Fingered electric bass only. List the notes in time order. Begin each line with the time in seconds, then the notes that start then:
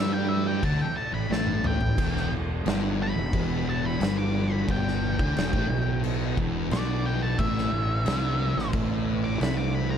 Already playing: G2
0.63 D2
1.13 A1
1.30 A1
1.81 A1
1.98 E1
2.32 E1
2.66 G1
3.18 E1
3.34 E1
4.01 G1
4.69 G1
5.19 D2
5.36 E1
5.54 A1
5.69 B1
6.38 E1
6.72 B1
7.39 A1
7.73 A1
8.07 C2
8.57 A1
8.74 A1
9.41 C2